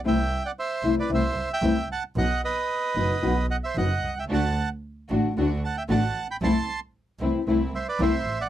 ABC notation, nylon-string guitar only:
X:1
M:4/4
L:1/8
Q:1/4=113
K:Ador
V:1 name="Nylon-string guitar"
[C,E,A,CE] z2 [C,E,A,CE] [C,E,A,CE] z [C,E,A,CE] z | [B,,F,B,^DF] z2 [B,,F,B,DF] [B,,F,B,DF] z [B,,F,B,DF] z | [D,A,DF] z2 [D,A,DF] [D,A,DF] z [D,A,DF] z | [C,E,A,CE] z2 [C,E,A,CE] [C,E,A,CE] z [C,E,A,CE] z |]